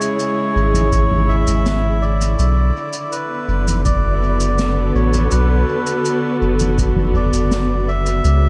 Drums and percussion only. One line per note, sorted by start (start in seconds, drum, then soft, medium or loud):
0.01 shaker medium
0.19 shaker medium
0.74 mid tom medium
0.74 shaker medium
0.92 kick loud
0.92 shaker medium
1.11 mid tom medium
1.47 shaker medium
1.66 snare medium
1.66 shaker medium
2.21 shaker medium
2.39 shaker medium
2.93 shaker medium
3.12 shaker medium
3.68 mid tom medium
3.68 shaker medium
3.85 kick loud
3.85 shaker medium
4.40 shaker medium
4.58 snare loud
4.58 shaker soft
5.13 mid tom medium
5.13 shaker medium
5.31 shaker medium
5.87 shaker medium
6.05 shaker medium
6.59 mid tom medium
6.59 shaker medium
6.78 kick loud
6.78 shaker medium
6.96 mid tom medium
7.33 shaker medium
7.51 snare medium
7.51 shaker medium
8.06 shaker medium
8.25 shaker medium